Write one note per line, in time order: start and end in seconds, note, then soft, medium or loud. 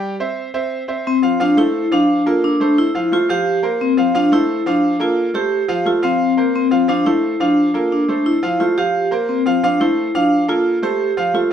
0.00 0.14 G3 medium
0.00 0.14 G4 medium
0.00 0.14 G5 medium
0.20 0.48 C4 medium
0.20 0.48 C5 medium
0.20 0.48 E5 medium
0.54 0.82 C4 medium
0.54 0.82 C5 medium
0.54 0.82 E5 medium
0.88 1.16 C4 medium
0.88 1.16 C5 medium
0.88 1.17 E5 medium
1.07 1.38 C4 medium
1.22 1.37 F3 medium
1.22 1.37 F4 medium
1.22 1.37 F5 medium
1.40 1.54 F3 medium
1.40 1.57 D4 loud
1.40 1.54 F4 medium
1.40 1.54 F5 medium
1.57 1.85 A3 medium
1.57 1.93 E4 loud
1.57 1.85 A4 medium
1.57 1.85 C5 medium
1.92 2.20 F3 medium
1.92 2.24 D4 medium
1.92 2.20 F4 medium
1.92 2.20 F5 medium
2.26 2.54 A#3 medium
2.26 2.34 F4 loud
2.26 2.54 A4 medium
2.26 2.54 A#4 medium
2.44 2.75 D4 medium
2.60 2.88 A3 medium
2.60 2.88 A4 medium
2.60 2.89 C5 medium
2.78 3.10 E4 loud
2.95 3.09 F3 medium
2.95 3.09 F4 medium
2.95 3.09 F5 medium
3.12 3.26 A3 medium
3.12 3.20 F4 loud
3.12 3.26 A4 medium
3.12 3.26 C5 medium
3.29 3.57 F3 medium
3.29 3.57 F4 medium
3.29 3.61 G4 loud
3.29 3.57 F5 medium
3.63 3.91 A#3 medium
3.63 3.91 A#4 medium
3.63 3.91 C5 medium
3.81 4.13 C4 medium
3.97 4.11 F3 medium
3.97 4.11 F4 medium
3.97 4.12 F5 medium
4.15 4.29 F3 medium
4.15 4.23 D4 loud
4.15 4.29 F4 loud
4.15 4.29 F5 medium
4.32 4.60 A3 medium
4.32 4.64 E4 loud
4.32 4.60 A4 medium
4.32 4.60 C5 medium
4.66 4.94 F3 medium
4.66 4.98 D4 medium
4.66 4.94 F4 medium
4.66 4.94 F5 medium
5.00 5.28 A#3 medium
5.00 5.33 F4 medium
5.00 5.28 A4 medium
5.00 5.28 A#4 medium
5.34 5.62 A3 medium
5.34 5.88 G4 loud
5.34 5.62 A4 medium
5.34 5.63 C5 medium
5.68 5.82 F3 medium
5.68 5.83 F4 medium
5.68 5.83 F5 medium
5.85 6.00 A3 medium
5.85 5.94 F4 loud
5.85 6.00 A4 medium
5.85 6.00 C5 medium
6.02 6.31 F3 medium
6.02 6.51 C4 medium
6.02 6.31 F4 medium
6.02 6.31 F5 medium
6.37 6.65 A#3 medium
6.37 6.65 A#4 medium
6.37 6.66 C5 medium
6.56 6.87 C4 medium
6.71 6.85 F3 medium
6.71 6.85 F4 medium
6.71 6.85 F5 medium
6.88 7.02 F3 medium
6.88 6.97 D4 medium
6.88 7.03 F4 medium
6.88 7.03 F5 medium
7.06 7.34 A3 medium
7.06 7.38 E4 loud
7.06 7.34 A4 medium
7.06 7.34 C5 medium
7.40 7.68 F3 medium
7.40 7.72 D4 loud
7.40 7.68 F4 medium
7.40 7.68 F5 medium
7.74 8.02 A#3 medium
7.74 7.83 F4 medium
7.74 8.02 A4 medium
7.74 8.03 A#4 medium
7.92 8.27 D4 medium
8.08 8.37 A3 medium
8.08 8.37 A4 medium
8.08 8.37 C5 medium
8.26 8.61 E4 medium
8.43 8.57 F3 medium
8.43 8.57 F4 loud
8.43 8.57 F5 medium
8.60 8.74 A3 medium
8.60 8.78 F4 loud
8.60 8.74 A4 medium
8.60 8.74 C5 medium
8.77 9.05 F3 medium
8.77 9.05 F4 medium
8.77 9.09 G4 medium
8.77 9.06 F5 medium
9.11 9.39 A#3 medium
9.11 9.40 A#4 medium
9.11 9.40 C5 medium
9.29 9.64 C4 medium
9.46 9.60 F3 medium
9.46 9.60 F4 medium
9.46 9.60 F5 medium
9.63 9.77 F3 medium
9.63 9.71 D4 medium
9.63 9.77 F4 medium
9.63 9.77 F5 loud
9.80 10.08 A3 medium
9.80 10.12 E4 loud
9.80 10.08 A4 medium
9.80 10.08 C5 medium
10.15 10.42 F3 medium
10.15 10.46 D4 medium
10.15 10.42 F4 medium
10.15 10.43 F5 medium
10.48 10.76 A#3 medium
10.48 10.81 F4 medium
10.48 10.76 A4 medium
10.48 10.77 A#4 medium
10.82 11.10 A3 medium
10.82 11.36 G4 loud
10.82 11.11 A4 medium
10.82 11.11 C5 medium
11.17 11.31 F3 medium
11.17 11.31 F4 medium
11.17 11.31 F5 medium
11.34 11.48 A3 medium
11.34 11.50 F4 loud
11.34 11.48 A4 medium
11.34 11.48 C5 medium